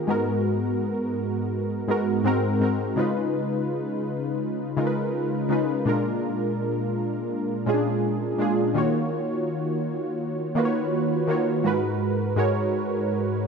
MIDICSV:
0, 0, Header, 1, 2, 480
1, 0, Start_track
1, 0, Tempo, 722892
1, 51, Time_signature, 4, 2, 24, 8
1, 8944, End_track
2, 0, Start_track
2, 0, Title_t, "Synth keys"
2, 0, Program_c, 0, 88
2, 0, Control_c, 0, 64, 127
2, 46, Note_on_c, 0, 44, 80
2, 51, Note_on_c, 0, 56, 68
2, 58, Note_on_c, 0, 59, 74
2, 60, Control_c, 0, 64, 0
2, 64, Note_on_c, 0, 66, 71
2, 69, Note_on_c, 0, 70, 85
2, 184, Control_c, 0, 64, 127
2, 957, Note_off_c, 0, 44, 0
2, 960, Note_off_c, 0, 56, 0
2, 963, Note_off_c, 0, 59, 0
2, 966, Note_off_c, 0, 66, 0
2, 969, Note_off_c, 0, 70, 0
2, 1246, Note_on_c, 0, 44, 82
2, 1252, Note_on_c, 0, 56, 68
2, 1257, Note_on_c, 0, 59, 71
2, 1264, Note_on_c, 0, 66, 73
2, 1269, Note_on_c, 0, 70, 86
2, 1478, Note_off_c, 0, 44, 0
2, 1484, Note_off_c, 0, 56, 0
2, 1486, Note_on_c, 0, 44, 88
2, 1492, Note_on_c, 0, 56, 77
2, 1494, Note_off_c, 0, 59, 0
2, 1495, Note_off_c, 0, 66, 0
2, 1498, Note_on_c, 0, 60, 87
2, 1499, Control_c, 0, 64, 0
2, 1500, Note_off_c, 0, 70, 0
2, 1503, Note_on_c, 0, 66, 78
2, 1509, Note_on_c, 0, 70, 99
2, 1630, Control_c, 0, 64, 127
2, 1716, Note_off_c, 0, 44, 0
2, 1719, Note_off_c, 0, 56, 0
2, 1722, Note_off_c, 0, 60, 0
2, 1724, Note_off_c, 0, 66, 0
2, 1725, Note_on_c, 0, 44, 77
2, 1727, Note_off_c, 0, 70, 0
2, 1732, Note_on_c, 0, 56, 69
2, 1737, Note_on_c, 0, 60, 71
2, 1743, Note_on_c, 0, 66, 68
2, 1749, Note_on_c, 0, 70, 85
2, 1956, Note_off_c, 0, 44, 0
2, 1959, Note_off_c, 0, 56, 0
2, 1961, Note_off_c, 0, 60, 0
2, 1964, Note_off_c, 0, 66, 0
2, 1965, Note_on_c, 0, 49, 78
2, 1967, Note_off_c, 0, 70, 0
2, 1971, Note_on_c, 0, 56, 69
2, 1976, Note_on_c, 0, 63, 73
2, 1980, Control_c, 0, 64, 0
2, 1982, Note_on_c, 0, 65, 71
2, 1988, Note_on_c, 0, 71, 88
2, 2094, Control_c, 0, 64, 127
2, 2877, Note_off_c, 0, 49, 0
2, 2880, Note_off_c, 0, 56, 0
2, 2882, Note_off_c, 0, 63, 0
2, 2885, Note_off_c, 0, 65, 0
2, 2888, Note_off_c, 0, 71, 0
2, 3165, Note_on_c, 0, 49, 84
2, 3172, Note_on_c, 0, 56, 74
2, 3178, Note_on_c, 0, 63, 72
2, 3183, Note_on_c, 0, 65, 76
2, 3189, Note_on_c, 0, 70, 72
2, 3230, Note_off_c, 0, 70, 0
2, 3232, Note_on_c, 0, 71, 90
2, 3622, Note_off_c, 0, 49, 0
2, 3626, Note_off_c, 0, 56, 0
2, 3629, Note_off_c, 0, 63, 0
2, 3632, Note_off_c, 0, 65, 0
2, 3644, Note_on_c, 0, 49, 79
2, 3650, Note_on_c, 0, 56, 74
2, 3656, Note_off_c, 0, 71, 0
2, 3656, Note_on_c, 0, 63, 72
2, 3661, Note_on_c, 0, 65, 69
2, 3668, Note_on_c, 0, 71, 84
2, 3875, Note_off_c, 0, 49, 0
2, 3878, Note_off_c, 0, 56, 0
2, 3881, Note_off_c, 0, 63, 0
2, 3883, Note_off_c, 0, 65, 0
2, 3886, Note_on_c, 0, 46, 85
2, 3887, Note_off_c, 0, 71, 0
2, 3892, Note_on_c, 0, 56, 77
2, 3897, Note_on_c, 0, 62, 76
2, 3900, Control_c, 0, 64, 0
2, 3904, Note_on_c, 0, 65, 74
2, 3910, Note_on_c, 0, 70, 88
2, 4009, Control_c, 0, 64, 127
2, 4797, Note_off_c, 0, 46, 0
2, 4801, Note_off_c, 0, 56, 0
2, 4803, Note_off_c, 0, 62, 0
2, 4806, Note_off_c, 0, 65, 0
2, 4809, Note_off_c, 0, 70, 0
2, 5087, Note_on_c, 0, 46, 79
2, 5092, Note_on_c, 0, 56, 75
2, 5098, Note_on_c, 0, 61, 61
2, 5104, Note_on_c, 0, 65, 74
2, 5110, Note_on_c, 0, 68, 93
2, 5141, Note_on_c, 0, 62, 77
2, 5145, Note_off_c, 0, 61, 0
2, 5543, Note_off_c, 0, 46, 0
2, 5546, Note_off_c, 0, 56, 0
2, 5552, Note_off_c, 0, 65, 0
2, 5555, Note_off_c, 0, 68, 0
2, 5566, Note_on_c, 0, 46, 78
2, 5569, Note_off_c, 0, 62, 0
2, 5571, Note_on_c, 0, 56, 70
2, 5577, Note_on_c, 0, 62, 71
2, 5583, Note_on_c, 0, 65, 70
2, 5589, Note_on_c, 0, 68, 86
2, 5796, Note_off_c, 0, 46, 0
2, 5798, Note_off_c, 0, 56, 0
2, 5801, Note_off_c, 0, 62, 0
2, 5804, Note_off_c, 0, 65, 0
2, 5806, Note_on_c, 0, 51, 82
2, 5807, Note_off_c, 0, 68, 0
2, 5813, Note_on_c, 0, 58, 75
2, 5818, Note_on_c, 0, 65, 71
2, 5821, Control_c, 0, 64, 0
2, 5823, Note_on_c, 0, 66, 73
2, 5830, Note_on_c, 0, 73, 92
2, 5926, Control_c, 0, 64, 127
2, 6717, Note_off_c, 0, 51, 0
2, 6721, Note_off_c, 0, 58, 0
2, 6723, Note_off_c, 0, 65, 0
2, 6726, Note_off_c, 0, 66, 0
2, 6729, Note_off_c, 0, 73, 0
2, 7006, Note_on_c, 0, 51, 81
2, 7011, Note_on_c, 0, 58, 81
2, 7017, Note_on_c, 0, 65, 77
2, 7024, Note_on_c, 0, 66, 76
2, 7029, Note_on_c, 0, 71, 73
2, 7070, Note_off_c, 0, 71, 0
2, 7072, Note_on_c, 0, 73, 91
2, 7463, Note_off_c, 0, 51, 0
2, 7465, Note_off_c, 0, 58, 0
2, 7469, Note_off_c, 0, 65, 0
2, 7472, Note_off_c, 0, 66, 0
2, 7487, Note_on_c, 0, 51, 77
2, 7492, Note_on_c, 0, 58, 77
2, 7496, Note_off_c, 0, 73, 0
2, 7498, Note_on_c, 0, 65, 72
2, 7504, Note_on_c, 0, 66, 71
2, 7509, Note_on_c, 0, 73, 87
2, 7716, Note_off_c, 0, 51, 0
2, 7719, Note_off_c, 0, 58, 0
2, 7722, Note_off_c, 0, 65, 0
2, 7725, Note_off_c, 0, 66, 0
2, 7727, Note_off_c, 0, 73, 0
2, 7727, Note_on_c, 0, 44, 81
2, 7733, Note_on_c, 0, 56, 72
2, 7739, Note_on_c, 0, 66, 76
2, 7740, Control_c, 0, 64, 0
2, 7745, Note_on_c, 0, 70, 72
2, 7751, Note_on_c, 0, 71, 91
2, 7850, Control_c, 0, 64, 127
2, 8183, Note_off_c, 0, 44, 0
2, 8186, Note_off_c, 0, 56, 0
2, 8189, Note_off_c, 0, 66, 0
2, 8192, Note_off_c, 0, 70, 0
2, 8195, Note_off_c, 0, 71, 0
2, 8207, Note_on_c, 0, 44, 87
2, 8213, Note_on_c, 0, 56, 81
2, 8218, Note_on_c, 0, 66, 78
2, 8224, Note_on_c, 0, 70, 78
2, 8230, Note_on_c, 0, 73, 92
2, 8944, Note_off_c, 0, 44, 0
2, 8944, Note_off_c, 0, 56, 0
2, 8944, Note_off_c, 0, 66, 0
2, 8944, Note_off_c, 0, 70, 0
2, 8944, Note_off_c, 0, 73, 0
2, 8944, End_track
0, 0, End_of_file